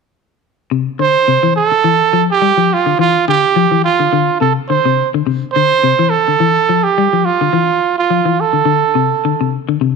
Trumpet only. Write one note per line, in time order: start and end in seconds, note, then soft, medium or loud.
1.00 1.53 C5 loud
1.56 2.24 A4 loud
2.31 2.75 G4 medium
2.74 2.99 F4 medium
3.00 3.25 F4 medium
3.28 3.80 G4 medium
3.84 4.37 F4 medium
4.41 4.54 A4 medium
4.69 5.10 C5 medium
5.53 6.11 C5 loud
6.10 6.85 A4 loud
6.84 7.27 G4 medium
7.25 7.98 F4 medium
7.99 8.42 F4 medium
8.40 9.54 A4 medium